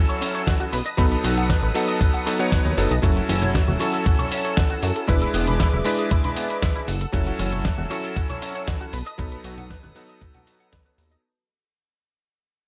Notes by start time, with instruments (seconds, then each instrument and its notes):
Already playing: electric grand piano F#3 C#4 E4 A4, string section A4 F#5 E6
0.09 clean electric guitar C#5, closed hi-hat
0.21 clean electric guitar C#4, open hi-hat, shaker
0.35 clean electric guitar C#5, closed hi-hat, shaker
0.47 clean electric guitar F#4, kick, snare, closed hi-hat, shaker
0.60 clean electric guitar F#4, closed hi-hat
0.72 analog synth bass B1, clean electric guitar B4, string section B4 A5 D#6, open hi-hat, shaker
0.85 clean electric guitar D#5, closed hi-hat, shaker
0.97 analog synth bass B1, electric grand piano F#3 B3 D#4 A4, clean electric guitar B4, kick, closed hi-hat, shaker
1.12 clean electric guitar B4, closed hi-hat
1.24 analog synth bass B1, clean electric guitar F#4, open hi-hat, shaker
1.37 clean electric guitar F#5, closed hi-hat, shaker
1.50 clean electric guitar B4, kick, snare, closed hi-hat, shaker
1.63 analog synth bass A1, clean electric guitar B4
1.74 electric grand piano F#3 B3 D#4 A4, clean electric guitar F#5, open hi-hat, shaker
1.88 clean electric guitar D#5, closed hi-hat, shaker
2.01 clean electric guitar B4, kick, closed hi-hat, shaker
2.14 clean electric guitar F#5, closed hi-hat
2.26 electric grand piano F#3 B3 D#4 A4, clean electric guitar F#4, open hi-hat, shaker
2.39 electric grand piano F#3 B3 D#4 C#5, clean electric guitar F#5, closed hi-hat, shaker
2.52 clean electric guitar B4, kick, snare, closed hi-hat, shaker
2.65 analog synth bass D#2, clean electric guitar B4, closed hi-hat
2.77 analog synth bass F#1, electric grand piano F#3 B3 D#4 A4, clean electric guitar B4, open hi-hat, shaker
2.91 analog synth bass B1, clean electric guitar D#5, closed hi-hat, shaker
3.02 analog synth bass F#1, electric grand piano F#3 C#4 E4 A4, clean electric guitar F#4, string section A4 F#5 E6, kick, closed hi-hat, cabasa, shaker
3.16 clean electric guitar F#4, closed hi-hat
3.29 analog synth bass F#1, clean electric guitar C#4, open hi-hat, high conga, cabasa, shaker
3.42 clean electric guitar C#5, closed hi-hat, low conga, cabasa, shaker
3.54 clean electric guitar F#4, kick, snare, closed hi-hat, cabasa, shaker
3.68 analog synth bass E1, clean electric guitar F#4, high conga, low conga, cabasa
3.79 electric grand piano F#3 C#4 E4 A4, clean electric guitar C#5, open hi-hat, cabasa, shaker
3.93 clean electric guitar A4, closed hi-hat, cabasa, shaker
4.06 clean electric guitar F#4, kick, closed hi-hat, cabasa, shaker
4.19 clean electric guitar C#5, closed hi-hat, low conga
4.31 clean electric guitar C#4, open hi-hat, cabasa, shaker
4.45 clean electric guitar C#5, closed hi-hat, cabasa, shaker
4.57 clean electric guitar F#4, kick, snare, closed hi-hat, cabasa, shaker
4.70 clean electric guitar F#4, closed hi-hat, cabasa
4.82 analog synth bass F#2, clean electric guitar F#4, open hi-hat, cabasa, shaker
4.96 clean electric guitar A4, closed hi-hat, cabasa, shaker
5.07 analog synth bass E1, electric grand piano G#3 D4 E4 B4, clean electric guitar E4, string section G#4 E5 D6, kick, closed hi-hat, cabasa, shaker
5.22 clean electric guitar E4, closed hi-hat
5.34 analog synth bass E1, clean electric guitar B3, open hi-hat, cabasa, shaker
5.47 clean electric guitar B4, closed hi-hat, low conga, cabasa, shaker
5.60 clean electric guitar E4, kick, snare, closed hi-hat, cabasa, shaker
5.73 analog synth bass D1, clean electric guitar E4, low conga, cabasa
5.84 electric grand piano G#3 D4 E4 B4, clean electric guitar B4, open hi-hat, cabasa, shaker
5.99 clean electric guitar G#4, closed hi-hat, cabasa, shaker
6.11 clean electric guitar E4, kick, closed hi-hat, cabasa, shaker
6.24 clean electric guitar B4, closed hi-hat, low conga
6.36 clean electric guitar B3, open hi-hat, cabasa, shaker
6.50 clean electric guitar B4, closed hi-hat, cabasa, shaker
6.62 clean electric guitar E4, kick, snare, closed hi-hat, cabasa, shaker
6.75 clean electric guitar E4, closed hi-hat, cabasa
6.88 analog synth bass F#1, clean electric guitar F#4, string section A4 F#5 E6, open hi-hat, cabasa, shaker
7.01 clean electric guitar A4, closed hi-hat, cabasa, shaker
7.12 analog synth bass F#1, electric grand piano F#3 C#4 E4 A4, clean electric guitar F#4, kick, closed hi-hat, cabasa, shaker
7.27 clean electric guitar F#4, closed hi-hat
7.39 analog synth bass F#1, clean electric guitar C#4, open hi-hat, high conga, cabasa, shaker
7.52 clean electric guitar C#5, closed hi-hat, low conga, cabasa, shaker
7.65 clean electric guitar F#4, kick, snare, closed hi-hat, cabasa, shaker
7.78 analog synth bass E1, clean electric guitar F#4, high conga, low conga, cabasa
7.90 electric grand piano F#3 C#4 E4 A4, clean electric guitar C#5, open hi-hat, cabasa, shaker
8.03 clean electric guitar A4, closed hi-hat, cabasa, shaker
8.16 clean electric guitar F#4, kick, closed hi-hat, cabasa, shaker
8.30 clean electric guitar C#5, closed hi-hat, low conga
8.42 clean electric guitar C#4, open hi-hat, cabasa, shaker
8.55 clean electric guitar C#5, closed hi-hat, cabasa, shaker
8.67 clean electric guitar F#4, kick, snare, closed hi-hat, cabasa, shaker
8.81 clean electric guitar F#4, closed hi-hat, cabasa
8.93 analog synth bass B1, string section B4 A5 D#6, clean electric guitar B4, open hi-hat, cabasa, shaker
9.06 clean electric guitar D#5, closed hi-hat, cabasa, shaker
9.18 analog synth bass B1, electric grand piano F#3 B3 D#4 A4, clean electric guitar B4, kick, closed hi-hat, cabasa, shaker
9.32 clean electric guitar B4, closed hi-hat, cabasa
9.44 analog synth bass B1, clean electric guitar F#4, open hi-hat, cabasa, shaker
9.57 clean electric guitar F#5, closed hi-hat, low conga, cabasa, shaker
9.70 clean electric guitar B4, kick, snare, closed hi-hat, cabasa, shaker
9.83 analog synth bass A1, clean electric guitar B4, closed hi-hat, high conga, low conga, cabasa
9.95 electric grand piano F#3 B3 D#4 A4, clean electric guitar F#5, open hi-hat, cabasa, shaker
10.09 clean electric guitar D#5, closed hi-hat, cabasa, shaker
10.21 clean electric guitar B4, kick, closed hi-hat, cabasa, shaker
10.34 clean electric guitar F#5, closed hi-hat, low conga, cabasa
10.47 clean electric guitar F#4, open hi-hat, cabasa, shaker
10.60 clean electric guitar F#5, closed hi-hat, cabasa, shaker
10.72 clean electric guitar B4, kick, snare, closed hi-hat, cabasa, shaker
10.85 clean electric guitar B4, closed hi-hat, cabasa
10.97 analog synth bass D#2, clean electric guitar B4, open hi-hat, cabasa, shaker
11.11 clean electric guitar D#5, closed hi-hat, shaker